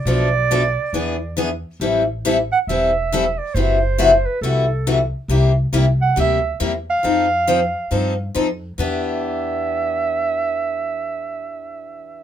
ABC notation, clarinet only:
X:1
M:4/4
L:1/8
Q:"Swing" 1/4=138
K:Em
V:1 name="Clarinet"
d6- d z | z3 f e3 d | c3 B A3 z | z3 f e2 z =f- |
=f6 z2 | e8- | e8 |]